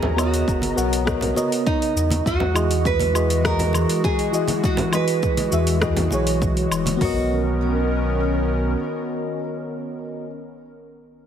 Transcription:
0.00 0.44 D#2 loud
0.00 1.92 C#3 medium
0.00 0.13 B3 medium
0.00 1.92 B3 medium
0.00 0.14 F#4 medium
0.00 0.19 G#4 medium
0.00 0.14 A#4 medium
0.00 0.14 C#5 medium
0.00 0.15 D#5 medium
0.00 6.97 D#5 medium
0.00 1.92 A#5 medium
0.00 low conga loud
0.16 0.73 B3 medium
0.16 0.73 F#4 medium
0.16 1.04 F#4 medium
0.16 0.73 A#4 medium
0.16 0.74 C#5 medium
0.16 0.74 D#5 medium
0.16 low woodblock medium
0.16 shaker medium
0.34 open hi-hat medium
0.34 shaker soft
0.48 0.72 F#1 medium
0.48 kick loud
0.48 shaker soft
0.62 open hi-hat soft
0.62 high conga medium
0.75 1.33 B1 loud
0.75 1.02 B3 medium
0.75 1.03 F#4 medium
0.75 1.03 A#4 medium
0.75 1.03 C#5 medium
0.75 1.03 F#5 medium
0.75 shaker medium
0.93 open hi-hat medium
0.93 shaker soft
1.05 1.32 B3 medium
1.05 1.32 F#4 medium
1.05 1.33 A#4 medium
1.05 1.33 C#5 medium
1.05 1.33 D#5 loud
1.05 kick medium
1.05 cross-stick medium
1.05 shaker soft
1.21 open hi-hat soft
1.21 low conga medium
1.34 1.93 B3 medium
1.34 1.93 F#4 medium
1.34 1.94 A#4 medium
1.34 1.94 C#5 medium
1.34 1.94 D#5 loud
1.34 high conga medium
1.34 shaker medium
1.52 open hi-hat medium
1.52 shaker soft
1.67 2.27 D#4 medium
1.67 kick loud
1.67 shaker soft
1.82 open hi-hat soft
1.95 2.21 E2 medium
1.95 6.97 E3 medium
1.95 6.97 G#3 medium
1.95 6.97 F#4 medium
1.95 shaker medium
2.11 open hi-hat medium
2.11 high conga medium
2.11 shaker soft
2.26 3.85 E2 loud
2.26 2.88 F#4 loud
2.26 kick loud
2.26 shaker soft
2.40 low conga medium
2.53 3.10 E3 medium
2.53 3.11 E4 medium
2.53 3.11 F#4 medium
2.53 3.11 G#4 medium
2.53 3.12 D#5 medium
2.53 low woodblock medium
2.53 shaker medium
2.71 open hi-hat medium
2.71 shaker soft
2.85 3.45 B4 loud
2.85 kick loud
2.85 shaker soft
3.00 open hi-hat soft
3.00 high conga medium
3.13 3.40 E3 medium
3.13 3.40 E4 medium
3.13 3.41 F#4 medium
3.13 3.41 G#4 medium
3.13 3.41 D#5 medium
3.13 low woodblock medium
3.13 shaker medium
3.30 open hi-hat medium
3.30 shaker soft
3.41 4.28 E3 medium
3.41 4.29 E4 medium
3.41 4.30 F#4 medium
3.41 4.30 G#4 medium
3.41 kick loud
3.41 cross-stick medium
3.45 4.00 A#4 loud
3.45 4.31 D#5 loud
3.45 shaker soft
3.59 open hi-hat soft
3.59 low conga medium
3.73 high conga medium
3.73 low woodblock medium
3.73 shaker medium
3.89 open hi-hat medium
3.89 shaker soft
4.04 4.65 G#4 medium
4.04 kick loud
4.04 shaker soft
4.19 open hi-hat soft
4.32 4.88 E3 medium
4.32 4.89 E4 medium
4.32 4.89 F#4 medium
4.32 4.89 G#4 medium
4.32 4.90 D#5 medium
4.32 shaker medium
4.48 open hi-hat medium
4.48 high conga medium
4.48 shaker soft
4.64 4.95 F#4 medium
4.64 kick loud
4.64 shaker soft
4.77 open hi-hat soft
4.77 low conga loud
4.91 5.48 E3 medium
4.91 5.48 E4 medium
4.91 5.48 F#4 medium
4.91 5.49 G#4 medium
4.91 6.09 B4 loud
4.91 5.49 D#5 medium
4.91 low woodblock medium
4.91 shaker medium
5.08 open hi-hat medium
5.08 shaker soft
5.23 kick loud
5.23 shaker soft
5.37 open hi-hat soft
5.37 high conga medium
5.51 6.08 E2 loud
5.51 5.78 E3 medium
5.51 5.78 E4 medium
5.51 5.78 F#4 medium
5.51 5.79 G#4 medium
5.51 5.79 E5 medium
5.51 shaker medium
5.67 open hi-hat medium
5.67 shaker soft
5.80 6.07 E3 medium
5.80 6.07 E4 medium
5.80 6.08 F#4 medium
5.80 6.08 G#4 medium
5.80 6.08 D#5 loud
5.80 kick loud
5.80 cross-stick medium
5.80 shaker soft
5.97 open hi-hat soft
5.97 low conga medium
6.08 6.41 B1 medium
6.08 6.97 E3 medium
6.08 6.98 E4 medium
6.08 6.97 F#4 medium
6.08 high conga medium
6.08 shaker medium
6.12 6.99 G#4 medium
6.12 7.00 C#5 medium
6.27 open hi-hat medium
6.27 shaker soft
6.42 6.66 B1 loud
6.42 kick loud
6.42 shaker soft
6.57 open hi-hat soft
6.70 6.96 E1 medium
6.70 low woodblock medium
6.70 shaker medium
6.86 open hi-hat medium
6.86 high conga medium
6.86 shaker soft
6.97 10.14 D#3 medium
6.97 10.25 B3 medium
6.97 10.14 C#4 medium
6.97 10.27 F#4 medium
7.01 8.75 B1 loud
7.01 10.15 B3 medium
7.01 10.30 F#4 medium
7.01 10.14 A#4 medium
7.01 10.29 A#4 medium
7.01 10.31 C#5 medium
7.01 10.33 D#5 medium
7.01 kick loud
7.01 floor tom loud
7.01 open hi-hat medium

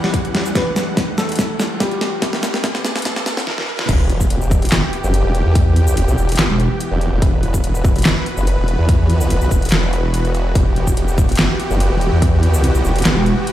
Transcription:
0.00 3.43 E2 medium
0.00 3.43 E3 medium
0.00 0.48 G3 medium
0.00 3.43 G3 medium
0.00 0.48 G4 medium
0.00 3.43 F#5 medium
0.00 snare medium
0.00 riser medium
0.14 kick loud
0.14 closed hi-hat medium
0.25 closed hi-hat soft
0.35 snare medium
0.35 closed hi-hat medium
0.46 shaker medium
0.55 1.10 B3 medium
0.55 1.10 B4 loud
0.55 kick loud
0.55 snare medium
0.55 closed hi-hat medium
0.76 snare medium
0.76 closed hi-hat medium
0.76 shaker medium
0.97 kick loud
0.97 snare medium
0.97 closed hi-hat medium
1.18 1.73 A3 medium
1.18 1.73 A4 loud
1.18 snare medium
1.18 shaker soft
1.29 closed hi-hat soft
1.32 closed hi-hat medium
1.35 kick loud
1.35 snare medium
1.35 closed hi-hat medium
1.39 closed hi-hat medium
1.39 shaker medium
1.60 snare medium
1.60 closed hi-hat medium
1.60 shaker soft
1.80 3.47 G3 medium
1.80 3.47 G4 medium
1.80 kick loud
1.80 snare medium
1.80 closed hi-hat medium
1.91 closed hi-hat soft
2.01 snare medium
2.01 closed hi-hat medium
2.22 kick loud
2.22 snare medium
2.22 closed hi-hat medium
2.33 snare medium
2.43 snare medium
2.43 closed hi-hat soft
2.43 shaker medium
2.54 snare medium
2.64 kick loud
2.64 snare medium
2.64 closed hi-hat medium
2.75 snare medium
2.85 snare loud
2.85 shaker medium
2.96 snare medium
2.96 closed hi-hat soft
2.98 closed hi-hat medium
3.02 kick loud
3.02 snare loud
3.02 closed hi-hat medium
3.05 closed hi-hat medium
3.16 snare medium
3.26 snare loud
3.26 closed hi-hat soft
3.26 shaker medium
3.37 snare medium
3.47 snare medium
3.58 snare medium
3.79 snare medium
3.89 4.29 E1 loud
3.89 13.52 E3 medium
3.89 13.52 B3 medium
3.89 13.52 F#4 medium
3.89 7.21 G4 medium
3.89 kick loud
3.89 closed hi-hat medium
3.89 crash loud
3.89 sub drop medium
4.10 closed hi-hat medium
4.21 kick medium
4.21 shaker medium
4.30 4.70 E1 loud
4.30 closed hi-hat medium
4.41 shaker medium
4.51 kick loud
4.51 shaker medium
4.62 closed hi-hat medium
4.65 closed hi-hat medium
4.69 4.81 G1 loud
4.69 snare loud
4.69 clap loud
4.69 closed hi-hat medium
4.72 closed hi-hat medium
4.93 closed hi-hat medium
5.04 5.23 F#1 loud
5.04 shaker medium
5.14 closed hi-hat medium
5.25 5.44 E1 loud
5.35 closed hi-hat medium
5.46 6.06 E2 loud
5.55 kick loud
5.55 closed hi-hat medium
5.76 closed hi-hat medium
5.87 shaker medium
5.97 closed hi-hat medium
6.08 6.16 B1 loud
6.08 shaker medium
6.18 6.37 E1 loud
6.18 shaker medium
6.29 closed hi-hat medium
6.32 closed hi-hat medium
6.36 6.48 G1 loud
6.36 snare loud
6.36 clap medium
6.36 closed hi-hat medium
6.39 closed hi-hat medium
6.50 6.69 E1 loud
6.60 closed hi-hat medium
6.80 closed hi-hat medium
6.91 7.11 E1 loud
7.01 closed hi-hat medium
7.12 7.21 E1 loud
7.22 7.62 E1 loud
7.22 10.54 B4 loud
7.22 kick loud
7.22 closed hi-hat medium
7.43 closed hi-hat medium
7.54 kick medium
7.54 shaker medium
7.64 8.04 E1 loud
7.64 closed hi-hat medium
7.75 shaker medium
7.85 kick loud
7.85 shaker medium
7.96 closed hi-hat soft
7.98 closed hi-hat medium
8.02 8.15 G1 loud
8.02 snare loud
8.02 clap medium
8.02 closed hi-hat medium
8.05 closed hi-hat medium
8.26 closed hi-hat medium
8.37 8.56 F#1 medium
8.37 shaker soft
8.47 closed hi-hat medium
8.58 8.77 E1 loud
8.68 closed hi-hat medium
8.79 9.40 E2 medium
8.89 kick loud
8.89 closed hi-hat medium
9.10 closed hi-hat medium
9.21 shaker medium
9.30 closed hi-hat medium
9.41 9.50 B1 medium
9.41 shaker medium
9.51 9.71 E1 loud
9.51 kick medium
9.51 shaker medium
9.62 closed hi-hat soft
9.65 closed hi-hat medium
9.69 10.54 E1 loud
9.69 snare loud
9.69 clap medium
9.69 closed hi-hat medium
9.72 closed hi-hat medium
9.93 closed hi-hat soft
10.14 closed hi-hat medium
10.25 closed hi-hat soft
10.35 closed hi-hat medium
10.55 10.95 E1 loud
10.55 13.52 G4 medium
10.55 kick loud
10.55 closed hi-hat medium
10.76 closed hi-hat soft
10.87 kick medium
10.87 shaker medium
10.97 11.37 E1 loud
10.97 closed hi-hat medium
11.08 shaker medium
11.18 kick loud
11.18 shaker medium
11.29 closed hi-hat soft
11.32 closed hi-hat medium
11.35 11.48 G1 loud
11.35 snare loud
11.35 clap medium
11.35 closed hi-hat medium
11.39 closed hi-hat medium
11.60 closed hi-hat medium
11.71 11.90 F#1 loud
11.71 shaker medium
11.80 closed hi-hat medium
11.91 12.11 E1 loud
12.01 closed hi-hat medium
12.12 12.73 E2 medium
12.22 kick loud
12.22 closed hi-hat medium
12.43 closed hi-hat medium
12.54 shaker medium
12.64 closed hi-hat medium
12.75 12.83 B1 medium
12.75 shaker medium
12.85 13.04 E1 loud
12.85 shaker medium
12.96 closed hi-hat medium
12.98 closed hi-hat medium
13.02 13.15 G1 loud
13.02 snare loud
13.02 clap medium
13.02 closed hi-hat medium
13.05 closed hi-hat medium
13.16 13.36 E1 medium
13.26 closed hi-hat medium
13.47 closed hi-hat medium

